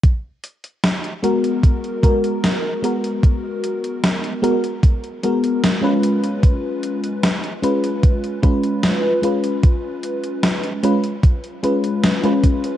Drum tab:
HH |x-xxxxxxxxxxx-xx|x-xxxxxxxxxxx-xx|x-xxxxxxxxxxx-xx|x-xxxxxxxxxxxxxx|
SD |----o-------o---|----o-------o---|----o-------o---|----o-------o---|
BD |o-------o-o-----|o-------o-------|o-------o-o-----|o-------o-----o-|